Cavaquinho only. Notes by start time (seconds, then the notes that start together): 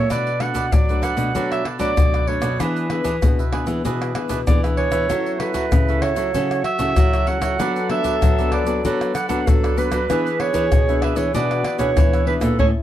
0.10 D4 A4 B4 D5
0.40 D4 A4 B4 D5
0.55 D4 A4 B4 D5
0.89 A4 B4 D5
1.02 D4 A4 B4 D5
1.17 A4 B4 D5
1.35 D4 A4 B4 D5
1.64 D4 A4 B4 D5
1.79 D4 A4 B4 D5
2.13 A4 B4 D5
2.27 D4 A4 B4 D5
2.42 A4 B4 D5
2.60 D4 G#4 B4 E5
2.89 D4 G#4 B4 E5
3.04 D4 G#4 B4 E5
3.39 G#4 B4 E5
3.52 D4 G#4 B4 E5
3.66 G#4 B4 E5
3.85 D4 G#4 B4 E5
4.15 D4 G#4 B4 E5
4.29 D4 G#4 B4 E5
4.63 G#4 B4 E5
4.77 D4 G#4 B4 E5
4.92 G#4 B4 E5
5.09 F#4 A4 C#5 E5
5.40 F#4 A4 C#5 E5
5.54 F#4 A4 C#5 E5
5.88 A4 C#5 E5
6.02 F#4 A4 C#5 E5
6.16 A4 C#5 E5
6.34 F#4 A4 C#5 E5
6.64 F#4 A4 C#5 E5
6.79 F#4 A4 C#5 E5
7.13 A4 C#5 E5
7.27 F#4 A4 C#5 E5
7.41 A4 C#5 E5
7.59 D4 A4 B4 D5
7.89 D4 A4 B4 D5
8.04 D4 A4 B4 D5
8.38 A4 B4 D5
8.52 D4 A4 B4 D5
8.67 A4 B4 D5
8.85 D4 A4 B4 D5
9.15 D4 A4 B4 D5
9.29 D4 A4 B4 D5
9.63 A4 B4 D5
9.77 D4 A4 B4 D5
9.91 A4 B4 D5
10.10 D4 G#4 B4 E5
10.39 D4 G#4 B4 E5
10.54 D4 G#4 B4 E5
10.89 G#4 B4 E5
11.02 D4 G#4 B4 E5
11.16 G#4 B4 E5
11.35 D4 G#4 B4 E5
11.65 D4 G#4 B4 E5
11.79 D4 G#4 B4 E5
12.13 G#4 B4 E5
12.27 D4 G#4 B4 E5
12.41 G#4 B4 E5
12.60 G#4 A4 C#5